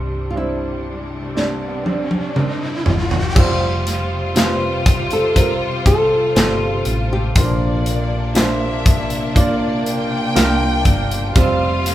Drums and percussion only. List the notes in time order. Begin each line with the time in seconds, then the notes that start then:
1.37 snare
1.86 high tom
2.11 high tom
2.36 mid tom
2.86 floor tom
3.11 floor tom
3.36 kick, crash
3.87 snare, closed hi-hat
4.36 snare, closed hi-hat
4.86 kick, closed hi-hat
5.11 closed hi-hat
5.36 kick, closed hi-hat
5.86 kick, closed hi-hat
6.36 snare, closed hi-hat
6.85 closed hi-hat
7.36 kick, closed hi-hat
7.86 closed hi-hat
8.35 snare, closed hi-hat
8.86 kick, closed hi-hat
9.10 closed hi-hat
9.36 kick, closed hi-hat
9.86 closed hi-hat
10.36 snare, closed hi-hat
10.85 kick, closed hi-hat
11.11 closed hi-hat
11.36 kick, closed hi-hat
11.86 snare, closed hi-hat